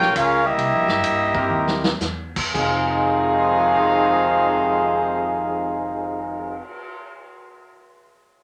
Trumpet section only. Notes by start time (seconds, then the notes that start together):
Already playing: F4 A#4 C#5 G5
0.16 C#4 G#4 A#4 F5
0.45 A#3 G4 D#5 E5
2.56 D#4 G#4 C5 F5